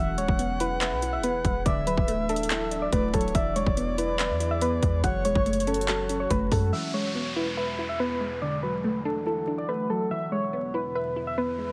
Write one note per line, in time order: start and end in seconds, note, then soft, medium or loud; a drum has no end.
0.00 0.19 E1 loud
0.00 1.02 E3 medium
0.00 1.64 E3 medium
0.00 1.64 B3 medium
0.00 1.64 G#4 medium
0.00 0.16 E5 medium
0.00 1.62 F#5 loud
0.18 0.28 D1 loud
0.18 1.23 G#3 medium
0.18 0.58 C#5 medium
0.18 closed hi-hat medium
0.28 0.93 E1 loud
0.28 kick loud
0.39 1.22 B3 medium
0.39 closed hi-hat medium
0.60 1.01 E4 loud
0.60 0.80 B4 medium
0.60 closed hi-hat medium
0.81 1.11 B4 medium
0.81 1.66 E5 medium
0.81 clap loud
0.81 closed hi-hat medium
0.92 1.20 B1 loud
1.02 1.66 E4 medium
1.02 closed hi-hat medium
1.13 1.23 E5 medium
1.18 1.43 E1 loud
1.24 1.66 B3 loud
1.24 1.63 B4 medium
1.24 closed hi-hat medium
1.44 1.65 E1 loud
1.44 1.66 G#3 medium
1.44 kick loud
1.44 closed hi-hat medium
1.66 1.96 D1 loud
1.66 2.71 D3 medium
1.66 3.33 F#3 medium
1.66 3.33 D4 medium
1.66 3.33 E4 medium
1.66 1.85 D5 medium
1.66 2.89 E5 loud
1.66 kick loud
1.66 closed hi-hat medium
1.87 2.93 F#3 medium
1.87 2.27 B4 medium
1.87 closed hi-hat medium
1.97 2.89 D1 loud
1.97 kick loud
2.08 2.91 A3 medium
2.08 closed hi-hat medium
2.29 2.70 D4 loud
2.29 2.49 A4 medium
2.29 closed hi-hat soft
2.36 closed hi-hat medium
2.43 closed hi-hat medium
2.50 3.35 E4 medium
2.50 2.80 A4 medium
2.50 clap loud
2.50 closed hi-hat medium
2.71 3.35 D4 medium
2.71 closed hi-hat medium
2.82 2.92 D5 medium
2.92 3.13 D1 loud
2.92 3.35 A3 medium
2.92 3.12 B4 medium
2.92 3.13 D5 medium
2.92 kick loud
2.92 closed hi-hat medium
3.14 3.34 D1 loud
3.14 3.35 F#3 medium
3.14 3.33 A4 medium
3.14 3.34 C#5 medium
3.14 kick loud
3.14 closed hi-hat medium
3.21 closed hi-hat medium
3.28 closed hi-hat soft
3.35 3.65 E1 loud
3.35 4.40 E3 medium
3.35 5.02 E3 medium
3.35 5.02 B3 medium
3.35 5.02 G#4 medium
3.35 5.00 D5 loud
3.35 3.54 E5 medium
3.35 kick loud
3.35 closed hi-hat medium
3.56 4.61 G#3 medium
3.56 3.96 C#5 medium
3.56 closed hi-hat medium
3.66 4.31 E1 loud
3.66 kick loud
3.77 4.60 B3 medium
3.77 closed hi-hat medium
3.98 4.39 E4 medium
3.98 4.18 B4 medium
3.98 closed hi-hat medium
4.19 4.49 B4 medium
4.19 5.04 E5 medium
4.19 clap loud
4.19 closed hi-hat medium
4.30 4.80 E2 loud
4.40 5.04 E4 medium
4.40 closed hi-hat medium
4.51 4.61 E5 medium
4.62 5.04 B3 loud
4.62 5.01 B4 medium
4.62 closed hi-hat medium
4.83 5.03 E2 loud
4.83 5.04 G#3 medium
4.83 kick loud
4.83 closed hi-hat medium
5.04 5.26 F#1 loud
5.04 6.09 F#3 medium
5.04 6.71 F#3 medium
5.04 6.71 C#4 medium
5.04 6.71 F#4 medium
5.04 6.27 C#5 loud
5.04 5.23 F#5 medium
5.04 kick loud
5.04 closed hi-hat medium
5.25 5.35 E1 loud
5.25 6.31 G#3 medium
5.25 5.65 C#5 medium
5.25 closed hi-hat medium
5.35 6.27 F#1 loud
5.35 kick loud
5.46 6.29 A3 medium
5.46 closed hi-hat soft
5.53 closed hi-hat medium
5.60 closed hi-hat medium
5.67 6.08 C#4 loud
5.67 5.87 A4 medium
5.67 closed hi-hat soft
5.74 closed hi-hat medium
5.81 closed hi-hat medium
5.88 6.73 F#4 medium
5.88 6.18 A4 medium
5.88 clap loud
5.88 closed hi-hat medium
6.09 6.73 C#4 medium
6.09 closed hi-hat medium
6.20 6.30 C#5 medium
6.31 6.51 F#1 loud
6.31 6.73 A3 loud
6.31 6.50 B4 medium
6.31 kick loud
6.31 closed hi-hat medium
6.52 6.72 F#2 loud
6.52 6.73 G#3 medium
6.52 6.71 A4 medium
6.52 kick loud
6.52 open hi-hat medium
6.73 8.40 E2 medium
6.73 8.40 B2 medium
6.73 7.78 E3 medium
6.73 8.40 G#3 medium
6.73 6.92 E5 medium
6.73 downlifter medium
6.94 7.99 G#3 medium
6.94 7.34 C#5 medium
7.15 7.98 B3 medium
7.36 7.77 E4 loud
7.36 7.56 B4 medium
7.57 7.87 B4 medium
7.57 8.42 E5 medium
7.79 8.42 E4 medium
7.89 7.99 E5 medium
8.00 8.42 B3 loud
8.00 8.39 B4 medium
8.21 8.42 G#3 medium
8.42 9.48 D3 medium
8.42 10.09 D3 medium
8.42 10.09 E3 medium
8.42 10.09 F#3 medium
8.42 8.61 D5 medium
8.63 9.69 F#3 medium
8.63 9.03 B4 medium
8.84 9.67 A3 medium
9.05 9.46 D4 medium
9.05 9.25 A4 medium
9.26 10.11 E4 medium
9.26 9.56 A4 medium
9.47 10.11 D4 medium
9.58 9.68 D5 medium
9.69 10.11 A3 medium
9.69 9.88 B4 medium
9.90 10.11 F#3 medium
9.90 10.09 A4 medium
10.11 11.72 E2 medium
10.11 11.72 B2 medium
10.11 11.16 E3 medium
10.11 11.72 B3 medium
10.11 10.31 E5 medium
10.11 riser medium
10.32 11.38 G#3 medium
10.32 10.72 C#5 medium
10.53 11.36 B3 medium
10.74 11.15 E4 medium
10.74 10.94 B4 medium
10.95 11.25 B4 medium
10.95 11.72 E5 medium
11.16 11.72 E4 medium
11.27 11.37 E5 medium
11.38 11.72 B3 loud
11.38 11.72 B4 medium
11.59 11.72 G#3 medium